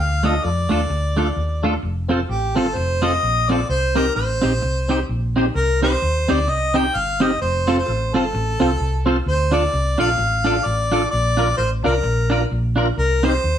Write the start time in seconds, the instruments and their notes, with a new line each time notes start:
Already playing: fingered electric bass D2
0.00 harmonica F5
0.23 clean electric guitar A3 D4 F4 A4, tonewheel organ D4 F4 A4, harmonica D#5
0.44 fingered electric bass F2, tonewheel organ F4 A4, harmonica D5
0.69 fingered electric bass D#2, clean electric guitar A3 D4 F4 A4, tonewheel organ D4 F4 A4
0.89 fingered electric bass D2, muted clean electric guitar stroke
1.16 clean electric guitar A3 D4 F4 A4, tonewheel organ D4 F4 A4
1.36 fingered electric bass D#2
1.62 clean electric guitar A3 D4 F4 A4, tonewheel organ D4 F4 A4
1.83 fingered electric bass F1
2.08 tonewheel organ C4 F4 A4, clean electric guitar C4 F4 A4 C5
2.29 fingered electric bass A1, harmonica G4
2.55 fingered electric bass G1, tonewheel organ C4 F4 A4, clean electric guitar C4 F4 A4 C5, harmonica A4
2.75 fingered electric bass F1, harmonica C5, muted clean electric guitar stroke
3.02 tonewheel organ C4 F4 A4, clean electric guitar C4 F4 A4 C5, harmonica D#5
3.23 fingered electric bass A#1
3.48 tonewheel organ C4 F4 A4, clean electric guitar C4 F4 A4 C5, harmonica D5
3.69 fingered electric bass C2, harmonica C5
3.94 tonewheel organ C4 D#4 G4, clean electric guitar C4 D#4 G4 C5, harmonica A#4
4.15 fingered electric bass A1, tonewheel organ D#4 G4, harmonica C5
4.41 fingered electric bass A#1, tonewheel organ C4 D#4 G4, clean electric guitar C4 D#4 G4 C5
4.62 fingered electric bass C2, muted clean electric guitar stroke
4.88 tonewheel organ C4 D#4 G4, clean electric guitar C4 D#4 G4 C5
5.09 fingered electric bass A#1
5.36 tonewheel organ C4 D#4 G4, clean electric guitar C4 D#4 G4 C5
5.55 fingered electric bass C2, harmonica A#4
5.81 tonewheel organ C4 D#4 G4, clean electric guitar C4 D#4 G4 C5, harmonica C5
6.02 fingered electric bass D#2
6.27 fingered electric bass D2, tonewheel organ C4 D#4 G4, clean electric guitar C4 D#4 G4 C5, harmonica D5
6.47 fingered electric bass C2, harmonica D#5, muted clean electric guitar stroke
6.74 tonewheel organ C4 D#4 G4, clean electric guitar C4 D#4 G4 C5, harmonica G5
6.95 fingered electric bass G1, harmonica F5
7.20 tonewheel organ C4 D#4 G4, clean electric guitar C4 D#4 G4 C5, harmonica D#5
7.41 fingered electric bass F1, harmonica C5
7.67 tonewheel organ C4 F4 A4, clean electric guitar C4 F4 A4 C5
7.79 harmonica C5
7.86 fingered electric bass A1, tonewheel organ F4 A4
8.13 fingered electric bass G1, tonewheel organ C4 F4 A4, clean electric guitar C4 F4 A4 C5, harmonica A4
8.33 fingered electric bass A1, muted clean electric guitar stroke
8.59 fingered electric bass C2, tonewheel organ C4 F4 A4, clean electric guitar C4 F4 A4 C5
8.80 fingered electric bass C2
9.05 tonewheel organ C4 F4 A4, clean electric guitar C4 F4 A4 C5
9.26 fingered electric bass D2, harmonica C5
9.52 clean electric guitar D4 F4 A4 D5, tonewheel organ D4 F4 A4, harmonica D5
9.73 fingered electric bass C2
9.98 fingered electric bass A#1, clean electric guitar D4 F4 A4 D5, tonewheel organ D4 F4 A4, harmonica F5
10.18 fingered electric bass A1, muted clean electric guitar stroke
10.45 clean electric guitar D4 F4 A4 D5, tonewheel organ D4 F4 A4
10.65 fingered electric bass A1, harmonica D5
10.91 tonewheel organ D4 F4 A4, clean electric guitar D4 F4 A4 D5
11.11 fingered electric bass A#1, harmonica D5
11.37 clean electric guitar D4 F4 A#4 D5, tonewheel organ D4 F4 A#4
11.57 fingered electric bass A1, tonewheel organ F4 A#4, harmonica C5
11.84 fingered electric bass C2, tonewheel organ D4 F4 A#4, clean electric guitar D4 F4 A#4 D5, harmonica A#4
12.03 fingered electric bass A#1, muted clean electric guitar stroke
12.30 clean electric guitar D4 F4 A#4 D5, tonewheel organ D4 F4 A#4
12.52 fingered electric bass A#1
12.76 clean electric guitar D4 F4 A#4 D5, tonewheel organ D4 F4 A#4
12.98 fingered electric bass C2, harmonica A#4
13.23 clean electric guitar C4 D#4 G4 C5, tonewheel organ D#4 G4 C5, harmonica C5
13.44 fingered electric bass D#2